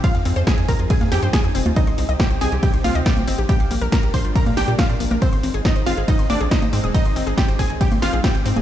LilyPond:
<<
  \new Staff \with { instrumentName = "Synth pluck" } { \time 4/4 \key aes \lydian \tempo 4 = 139 <f' f''>8 r8 <aes' aes''>8 <bes' bes''>8 <aes' aes''>8 <g' g''>8 <aes' aes''>8 r8 | <ees' ees''>8 r8 <g' g''>8 <aes' aes''>8 <g' g''>8 <f' f''>8 <g' g''>8 r8 | <g' g''>8 r8 <bes' bes''>8 <c'' c'''>8 <bes' bes''>8 <g' g''>8 <f' f''>8 r8 | <c' c''>8 r8 <ees' ees''>8 <f' f''>8 <ees' ees''>8 <d' d''>8 <ees' ees''>8 r8 |
<ees' ees''>8 r8 <g' g''>8 <aes' aes''>8 <g' g''>8 <f' f''>8 <g' g''>8 r8 | }
  \new Staff \with { instrumentName = "Synth arpeggio sound" } { \time 4/4 \key aes \lydian c'16 f''16 c'16 c''16 aes'16 aes'16 c'16 f'16 c'16 f''16 c'16 c''16 aes'16 aes'16 c'16 f'16 | c'16 c'''16 c'16 ees''16 c''16 c''16 c'16 g'16 c'16 c'''16 c'16 ees''16 c''16 c''16 c'16 g'16 | bes16 f''16 bes16 bes'16 g'16 g'16 bes16 f'16 bes16 f''16 d'16 g'16 bes16 d''16 bes16 bes'16 | c'16 c'''16 c'16 aes'16 c''16 c''16 c'16 aes'16 c'16 c'''16 c'16 aes'16 c''16 c''16 c'16 aes'16 |
c'16 c'''16 c'16 aes'16 c''16 c''16 c'16 aes'16 c'16 c'''16 c'16 aes'16 c''16 c''16 c'16 aes'16 | }
  \new Staff \with { instrumentName = "Analog synth pad" } { \time 4/4 \key aes \lydian << { <f aes'>1 | <c c' g'>1 | <g d'>1 | <aes ees'>1~ |
<aes ees'>1 | } \\ { <c' ees'>1~ | <c' ees'>1 | bes1 | c'1~ |
c'1 | } >> }
  \new Staff \with { instrumentName = "Analog synth bass" } { \clef bass \time 4/4 \key aes \lydian r16 f,16 f,16 f,16 r16 f,16 f,16 f,16 r16 f,16 f,16 g,16 r16 f,16 f,,16 ees,16 | r16 c,16 c,16 c,16 r16 c,16 c,16 c,16 r16 c,16 c,16 d,16 r16 c,16 g,,16 bes,,16 | r16 bes,,16 bes,,16 bes,,16 r16 bes,,16 bes,,16 bes,,16 r16 bes,16 bes,,16 bes,16 r16 bes,16 bes,,16 bes,,16 | r16 aes,,16 aes,,16 aes,,16 r16 aes,,16 aes,,16 aes,,16 r16 aes,,16 aes,,16 bes,,16 r16 aes,,16 aes,16 ees,,16 |
r16 aes,,16 aes,,16 aes,,16 r16 aes,,16 aes,,16 aes,,16 r16 aes,,16 aes,,16 bes,,16 r16 aes,,16 aes,16 ees,,16 | }
  \new DrumStaff \with { instrumentName = "Drums" } \drummode { \time 4/4 <hh bd cymr>16 hh16 hho16 hh16 <hh bd cymr sn>16 hh16 <hho bd>16 hh16 <hh bd cymr>16 <cgho hh>16 <hho sn>16 hh16 <hh bd cymr sn>16 hh16 hho16 <cgho hh>16 | <hh bd cymr>16 hh16 hho16 hh16 <hh bd cymr sn>16 hh16 hho16 hh16 <hh bd cymr>16 hh16 <cgho hho>16 hh16 <hh bd cymr sn>16 <cgho hh>16 hho16 hh16 | <hh bd cymr>16 hh16 hho16 hh16 <hh bd cymr sn>16 hh16 <hho bd>16 hh16 <hh bd cymr>16 <cgho hh>16 <hho sn>16 hh16 <hh bd cymr sn>16 hh16 hho16 cgho16 | <hh bd cymr>16 hh16 hho16 hh16 <hh bd cymr sn>16 hh16 hho16 hh16 <hh bd cymr>16 hh16 <cgho hho>8 <hh bd cymr sn>16 <cgho hh>16 hho16 hh16 |
<hh bd cymr>16 hh16 hho16 hh16 <hh bd cymr sn>16 hh16 <hho bd>16 hh16 <hh bd cymr>16 <cgho hh>16 <hho sn>16 hh16 <hh bd cymr sn>16 hh16 hho16 <cgho hh>16 | }
>>